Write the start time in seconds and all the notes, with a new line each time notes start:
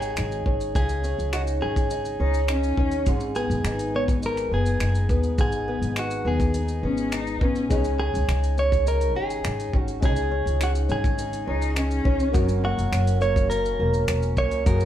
Already playing: G#1 C#3 C#4 D#4 G#4
0.02 shaker
0.17 G#1 D#4, finger snap, shaker
0.32 shaker
0.46 G#1 C#4, kick
0.61 shaker
0.75 C#2 C#3 G#4, kick, shaker
0.89 shaker
1.03 C#4, shaker
1.19 C#2, shaker
1.33 D#4 F#4, finger snap, shaker
1.47 shaker
1.62 G#1 C#4 G#4
1.76 kick, shaker
1.90 D#4, shaker
2.05 shaker
2.20 C#2 C#4 D#4
2.34 shaker
2.48 C#4 D#4, finger snap, shaker
2.63 shaker
2.77 D#2 C#4, kick
2.91 shaker
3.06 G#1 G#2 G#4, kick, shaker
3.20 shaker
3.35 B3 G#4, shaker
3.50 G#1, shaker
3.64 G#1 D#4, finger snap, shaker
3.79 shaker
3.94 B3 C#5
4.08 kick, shaker
4.23 D#4 A#4, shaker
4.37 finger snap, shaker
4.52 F#1 B3 G#4
4.66 shaker
4.80 F#1 D#4, finger snap, shaker
4.95 shaker
5.09 D#2 B3, kick, shaker
5.23 shaker
5.38 G#1 G#2 G#4, kick, shaker
5.52 shaker
5.68 B3
5.82 G#1, shaker
5.96 D#4 F#4, finger snap, shaker
6.11 shaker
6.25 D#2 B3 G#4
6.40 kick, shaker
6.54 D#4, shaker
6.68 shaker
6.83 G#1 B3 C#4
6.97 shaker
7.12 D#4, finger snap, shaker
7.27 shaker
7.40 G#1 B3 C#4, kick
7.56 shaker
7.69 C#2 C#3 G#3 D#4 G#4 C#5, kick, shaker
7.84 shaker
7.99 C#4 G#4
8.14 C#2, shaker
8.28 C#2 D#4, finger snap, shaker
8.44 shaker
8.57 C#4 C#5, shaker
8.72 kick, shaker
8.86 D#4 A#4, shaker
9.01 shaker
9.15 G#1 C#4 G#4
9.30 shaker
9.44 G#1 D#4, finger snap, shaker
9.60 shaker
9.73 G#1 C#4, kick
9.80 F#4
9.88 shaker
10.00 C#2 C#3 G#3 C#4 G#4, kick, shaker
10.04 D#4 G#4 C#5
10.16 shaker
10.31 C#4
10.46 C#2, shaker
10.60 D#4 F#4, finger snap, shaker
10.75 shaker
10.89 G#1 C#4 G#4, shaker
11.04 kick, shaker
11.18 D#4, shaker
11.33 shaker
11.47 C#2 C#4 D#4
11.62 shaker
11.75 C#4 D#4, finger snap, shaker
11.91 shaker
12.05 C#2 C#4, kick
12.20 shaker
12.32 F#1 F#2 A#3 F#4 A#4, kick, shaker
12.36 C#5
12.49 shaker
12.64 A#3 F#4
12.78 F#1, shaker
12.92 F#1 C#4, finger snap, shaker
13.07 shaker
13.20 A#3 C#5, shaker
13.36 kick, shaker
13.50 C#4 A#4, shaker
13.65 shaker
13.79 E1 A#3
13.94 shaker
14.08 E1 C#4, finger snap, shaker
14.23 shaker
14.37 C#2 A#3 C#5, kick, shaker
14.51 shaker
14.64 F#1 F#2 A#3 F#4 G#4 A#4, kick, shaker
14.80 shaker